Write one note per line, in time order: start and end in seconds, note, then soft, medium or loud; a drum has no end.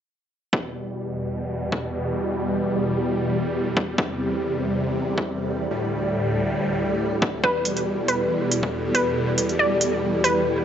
0.53 5.67 E2 medium
0.53 3.95 B2 medium
0.53 5.67 G3 medium
0.53 10.65 E4 medium
0.53 kick loud
0.63 10.65 A4 medium
0.94 10.65 D5 medium
1.70 10.65 G4 medium
1.70 kick medium
3.77 kick medium
3.98 5.69 C3 medium
3.98 kick loud
5.18 kick medium
5.71 7.42 D2 medium
5.71 7.42 A2 medium
5.71 7.42 G3 medium
7.22 kick loud
7.44 10.65 E2 medium
7.44 10.65 B2 medium
7.44 10.65 G3 medium
7.44 8.00 B4 loud
7.44 kick loud
7.65 closed hi-hat medium
7.77 closed hi-hat soft
8.08 8.87 B4 medium
8.08 closed hi-hat medium
8.52 closed hi-hat medium
8.63 kick medium
8.95 9.51 B4 medium
8.95 closed hi-hat medium
9.38 closed hi-hat medium
9.49 closed hi-hat soft
9.59 10.16 D5 medium
9.81 closed hi-hat medium
10.24 10.65 B4 medium
10.24 closed hi-hat medium